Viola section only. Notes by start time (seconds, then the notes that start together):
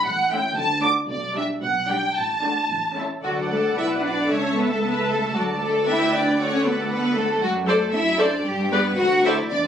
0.32 A3 C#4
0.84 A3 D4
1.36 G3 D4
1.89 G3 D4
2.43 A3 D4
2.97 A3 C#4
3.24 A4 D5
3.76 B4
4.29 A4 E5
5.35 D5
5.86 B4
6.39 A4
7.68 A4 C5
8.20 A4 C5
8.72 G4 B4
9.25 A4 C5